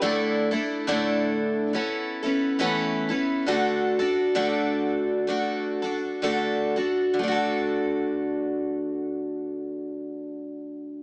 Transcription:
X:1
M:4/4
L:1/8
Q:"Swing" 1/4=65
K:D
V:1 name="Twelve-string acoustic guitar"
[A,,D,A,DEA] [A,DEA] [A,,D,A,DEA]2 [B,CEA] [B,CEA] [A,,E,B,CEA] [B,CEA] | [D,A,DFA] [DFA] [D,A,DFA]2 [A,DFA] [DFA] [D,A,DFA] [DFA] | [D,A,DFA]8 |]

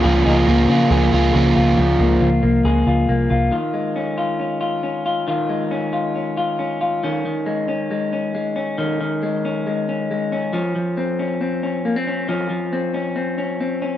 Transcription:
X:1
M:4/4
L:1/16
Q:1/4=137
K:Db
V:1 name="Overdriven electric guitar"
[D,F,B,FA]2 [B,FA]2 [D,F,B,FA]2 [B,FA]2 [F,B,FA]2 [B,FA]2 [D,F,B,FA]4 | z16 | z16 | z16 |
z16 | z16 | z16 | z16 |]
V:2 name="Clean electric guitar"
[F,B,FA]2 E F B,2 F2 A2 F2 A2 F2 | F,2 B,2 F2 B,2 A2 F2 B,2 F2 | [E,F]2 A,2 D2 F2 D2 F2 D2 F2 | [E,F]2 A,2 D2 F2 D2 F2 D2 F2 |
[E,D]2 E,2 A,2 D2 A,2 D2 A,2 D2 | [E,D]2 E,2 A,2 D2 A,2 D2 A,2 D2 | [F,D]2 F,2 C2 D2 C2 D2 B, C D2 | [F,D]2 F,2 C2 D2 C2 D2 C2 D2 |]
V:3 name="Picked electric bass" clef=bass
D,,2 D,,2 D,,2 D,2 D,,2 D,,2 D,,2 D,,2 | D,,2 D,,2 D,,2 C,,2 D,,2 D,,2 C,,2 C,,2 | z16 | z16 |
z16 | z16 | z16 | z16 |]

